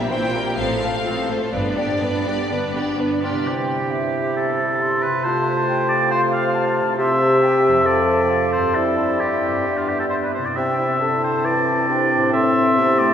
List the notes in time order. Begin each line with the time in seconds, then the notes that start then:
Already playing: A#2 G3 A#3 C4 G4 A#4
0.10 A#2 E3 C4 E4 C5 G5
0.33 G3 A#3 G4 A#4
0.57 A1 A2 F3 C4 A4 C5 F5
0.80 A3 C4 F4 A4
1.04 A2 F3 C4 A4 C5
1.28 A3 F4 A4 C5
1.53 G1 G2 B3 D4 B4 D5
1.77 B3 D4 G4 D5
2.01 G2 B3 D4 B4
2.25 B3 D4 G4 D5
2.50 G2 D3 B3 D4 B4
2.74 B3 D4 G4 D5
2.98 G2 B3 D4 B4
3.22 B3 D4 F4 G4 D5
3.29 C3
3.33 E4
3.38 G4
3.42 C3 C5
3.46 G3 E4 G4 G5
3.91 E5
4.36 A4
4.81 C6
5.02 C3 B4
5.10 F4
5.15 A4
5.20 C5
5.24 A3 F4 C5 A5
5.68 G5
5.89 D5
6.11 C5 F5
6.33 F5
6.55 A5
6.81 C3
6.85 E4
6.90 G4
6.94 C5 C6
6.98 C3 C4 G4 E5
7.41 G5
7.68 F2
7.72 F4
7.77 A4
7.81 F3 C5 A5
7.86 C4 A4 D5
8.29 F5
8.52 C5
8.56 G2
8.61 E4
8.65 G4
8.69 C5
8.74 G3 C4 E4 A4 E5
9.20 C4 E4 G4
9.47 G2
9.52 D4
9.56 G4
9.61 B3 B4
9.65 B3 D4
9.77 F4
9.88 G4
10.00 A4
10.10 C5
10.23 B4
10.34 C3 C5
10.42 E4 D5
10.47 G4
10.51 C5
10.55 C3 C4 E4 E5 G5
10.79 E4
11.01 D3 A5
11.24 C5
11.45 E3 E4 D5
11.89 C3 D4 G5
12.15 A2
12.20 E4
12.24 A4
12.29 C5 E5 C6
12.33 A2 C4
12.77 C3 B3
12.99 A3 D5